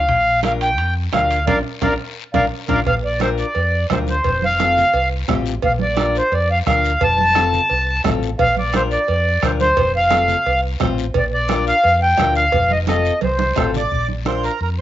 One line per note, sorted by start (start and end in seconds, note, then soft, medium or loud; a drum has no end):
0.00 0.40 F5 loud
0.09 0.79 A#1 medium
0.09 bombo low medium
0.09 high conga soft
0.09 high timbale medium
0.09 long guiro medium
0.43 0.68 D4 medium
0.43 0.68 F4 medium
0.43 0.69 A#4 medium
0.43 0.53 F5 medium
0.43 bombo rim medium
0.43 high conga medium
0.43 high timbale medium
0.43 short guiro medium
0.61 0.94 G5 loud
0.61 high timbale medium
0.61 short guiro medium
0.78 1.06 F2 medium
0.78 high conga soft
0.78 high timbale medium
0.78 long guiro medium
1.12 1.47 D2 medium
1.12 1.37 D4 medium
1.12 1.38 F4 medium
1.12 1.38 A#4 medium
1.12 1.45 F5 medium
1.12 bombo low medium
1.12 bombo rim medium
1.12 high conga medium
1.12 high timbale medium
1.12 low timbale medium
1.12 short guiro medium
1.31 high timbale medium
1.31 short guiro medium
1.47 1.61 A#1 medium
1.47 1.60 D4 medium
1.47 1.59 F4 medium
1.47 1.59 A#4 medium
1.47 1.59 D5 medium
1.47 1.59 F5 loud
1.47 bombo low medium
1.47 high conga loud
1.47 high timbale medium
1.47 long guiro medium
1.82 1.95 A#1 medium
1.82 1.93 D4 medium
1.82 1.93 F4 medium
1.82 1.94 A#4 medium
1.82 1.94 D5 medium
1.82 1.94 F5 medium
1.82 bombo low medium
1.82 high conga loud
1.82 high timbale medium
1.82 long guiro medium
2.34 2.47 A#1 medium
2.34 2.46 D4 medium
2.34 2.46 F4 medium
2.34 2.46 A#4 medium
2.34 2.46 D5 medium
2.34 2.45 F5 medium
2.34 bombo low medium
2.34 high conga loud
2.34 high timbale medium
2.34 long guiro medium
2.68 2.82 A#1 medium
2.68 2.80 D4 medium
2.68 2.80 F4 medium
2.68 2.80 A#4 medium
2.68 2.80 D5 medium
2.68 2.80 F5 medium
2.68 bombo low medium
2.68 high conga medium
2.68 high timbale medium
2.68 long guiro loud
2.86 3.42 A#1 medium
2.86 2.95 F5 loud
2.86 bombo low medium
2.86 cowbell medium
2.86 high conga soft
2.86 long guiro medium
3.05 3.20 D5 medium
3.20 3.45 D4 medium
3.20 3.45 F4 medium
3.20 3.45 A#4 medium
3.20 3.29 C5 medium
3.20 bombo rim medium
3.20 cowbell medium
3.20 high conga medium
3.20 short guiro medium
3.38 3.87 D5 medium
3.38 short guiro medium
3.55 3.83 F2 medium
3.55 cowbell medium
3.55 high conga soft
3.55 long guiro medium
3.90 4.18 D2 medium
3.90 4.15 D4 medium
3.90 4.15 F4 medium
3.90 4.15 A#4 medium
3.90 3.99 C5 medium
3.90 bombo low medium
3.90 bombo rim medium
3.90 cowbell medium
3.90 high conga medium
3.90 low timbale medium
3.90 short guiro medium
4.07 4.44 C5 medium
4.07 high conga medium
4.07 short guiro medium
4.24 4.80 F1 medium
4.24 bombo low medium
4.24 cowbell medium
4.24 high conga soft
4.24 long guiro medium
4.42 5.08 F5 loud
4.42 high conga medium
4.59 4.84 C4 medium
4.59 4.84 F4 medium
4.59 4.84 A4 medium
4.59 bombo rim medium
4.59 cowbell medium
4.59 high conga medium
4.59 short guiro medium
4.77 low conga medium
4.77 short guiro medium
4.94 5.22 C2 medium
4.94 cowbell medium
4.94 high conga soft
4.94 long guiro medium
5.28 5.57 A1 medium
5.28 5.53 C4 medium
5.28 5.53 F4 medium
5.28 5.53 G4 medium
5.28 bombo low medium
5.28 bombo rim medium
5.28 cowbell medium
5.28 high conga medium
5.28 low conga medium
5.28 low timbale medium
5.28 short guiro medium
5.46 short guiro medium
5.62 6.19 A#1 loud
5.62 5.72 F5 medium
5.62 bombo low medium
5.62 cowbell loud
5.62 high conga soft
5.62 long guiro medium
5.79 6.17 D5 medium
5.79 high conga medium
5.96 6.21 D4 medium
5.96 6.21 F4 medium
5.96 6.22 A#4 medium
5.96 bombo rim medium
5.96 cowbell medium
5.96 high conga loud
5.96 short guiro medium
6.15 6.34 C5 medium
6.15 short guiro medium
6.32 6.60 F2 medium
6.32 6.49 D5 medium
6.32 cowbell medium
6.32 high conga soft
6.32 long guiro medium
6.51 6.58 F5 loud
6.66 6.94 D2 medium
6.66 6.91 D4 medium
6.66 6.91 F4 medium
6.66 6.91 A#4 medium
6.66 7.03 F5 medium
6.66 bombo low medium
6.66 bombo rim medium
6.66 cowbell medium
6.66 high conga medium
6.66 short guiro medium
6.85 short guiro medium
7.01 7.57 F1 loud
7.01 8.01 A5 loud
7.01 bombo low medium
7.01 cowbell loud
7.01 high conga soft
7.01 long guiro medium
7.18 high conga medium
7.35 7.60 C4 medium
7.35 7.60 F4 medium
7.35 7.60 A4 medium
7.35 bombo rim medium
7.35 cowbell medium
7.35 high conga loud
7.35 short guiro medium
7.53 low conga medium
7.53 short guiro medium
7.70 7.98 C2 medium
7.70 cowbell medium
7.70 high conga soft
7.70 long guiro medium
8.04 8.32 A1 medium
8.04 8.29 C4 medium
8.04 8.29 F4 medium
8.04 8.29 A4 medium
8.04 bombo low medium
8.04 bombo rim medium
8.04 cowbell medium
8.04 high conga medium
8.04 low conga medium
8.04 low timbale medium
8.04 short guiro medium
8.23 short guiro medium
8.39 8.95 A#1 medium
8.39 8.55 F5 loud
8.39 bombo low medium
8.39 cowbell loud
8.39 high conga soft
8.39 long guiro medium
8.57 8.75 D5 loud
8.57 high conga medium
8.73 8.98 D4 medium
8.73 8.98 F4 medium
8.73 8.99 A#4 medium
8.73 8.82 C5 medium
8.73 bombo rim medium
8.73 cowbell medium
8.73 high conga loud
8.73 short guiro medium
8.91 9.45 D5 loud
8.91 short guiro medium
9.08 9.36 F2 medium
9.08 cowbell medium
9.08 high conga soft
9.08 long guiro medium
9.42 9.70 D2 medium
9.42 9.67 D4 medium
9.42 9.67 F4 medium
9.42 9.67 A#4 medium
9.42 9.51 C5 medium
9.42 bombo low medium
9.42 bombo rim medium
9.42 cowbell medium
9.42 high conga medium
9.42 short guiro medium
9.60 9.92 C5 loud
9.60 high conga medium
9.60 short guiro medium
9.77 10.32 F1 loud
9.77 bombo low medium
9.77 cowbell loud
9.77 high conga soft
9.77 long guiro medium
9.96 10.60 F5 medium
10.10 10.35 C4 medium
10.10 10.36 F4 medium
10.10 10.36 A4 medium
10.10 bombo rim medium
10.10 cowbell medium
10.10 high conga loud
10.10 short guiro medium
10.28 low conga medium
10.28 short guiro medium
10.46 10.74 C2 medium
10.46 cowbell medium
10.46 high conga soft
10.46 long guiro medium
10.80 11.08 A1 medium
10.80 11.05 C4 medium
10.80 11.05 F4 medium
10.80 11.05 C5 medium
10.80 bombo low medium
10.80 bombo rim medium
10.80 cowbell medium
10.80 high conga medium
10.80 low conga medium
10.80 low timbale medium
10.80 short guiro medium
10.98 short guiro medium
11.14 11.70 A#1 loud
11.14 11.25 D5 medium
11.14 bombo low medium
11.14 cowbell loud
11.14 high conga soft
11.14 long guiro medium
11.33 11.65 D5 loud
11.48 11.74 D4 medium
11.48 11.74 F4 medium
11.48 11.74 A#4 medium
11.48 bombo rim medium
11.48 cowbell medium
11.48 high conga loud
11.48 short guiro medium
11.67 12.00 F5 loud
11.67 short guiro medium
11.84 12.12 F2 medium
11.84 cowbell medium
11.84 high conga soft
11.84 long guiro medium
12.02 12.34 G5 loud
12.17 12.47 D2 medium
12.17 12.43 D4 medium
12.17 12.43 F4 medium
12.17 12.43 A#4 medium
12.17 bombo low medium
12.17 bombo rim medium
12.17 cowbell medium
12.17 high conga medium
12.17 low timbale medium
12.17 short guiro medium
12.35 12.71 F5 loud
12.35 short guiro medium
12.52 13.09 F1 loud
12.52 bombo low medium
12.52 cowbell loud
12.52 high conga soft
12.52 long guiro medium
12.71 12.79 D#5 loud
12.71 high conga medium
12.87 13.12 C4 medium
12.87 13.12 F4 medium
12.87 13.13 A4 medium
12.87 13.20 D#5 medium
12.87 bombo rim medium
12.87 cowbell medium
12.87 high conga medium
12.87 short guiro medium
13.05 short guiro medium
13.21 13.50 C2 medium
13.21 13.71 C5 medium
13.21 cowbell medium
13.21 high conga loud
13.21 long guiro medium
13.39 high conga loud
13.56 13.85 A1 medium
13.56 13.81 C4 medium
13.56 13.81 F4 medium
13.56 13.82 A4 medium
13.56 bombo low medium
13.56 bombo rim medium
13.56 cowbell medium
13.56 low timbale medium
13.56 short guiro medium
13.74 14.08 D5 medium
13.74 low conga medium
13.74 short guiro medium
13.91 14.47 A#1 medium
13.91 bombo low medium
13.91 high conga soft
13.91 long guiro medium
14.08 high conga medium
14.25 14.50 D4 medium
14.25 14.50 F4 medium
14.25 14.50 A#4 medium
14.25 14.45 C5 medium
14.25 bombo rim medium
14.25 high conga medium
14.25 short guiro medium
14.43 14.60 A#4 medium
14.43 short guiro medium
14.61 14.81 F2 medium
14.61 14.70 A#4 medium
14.61 high conga soft
14.61 long guiro medium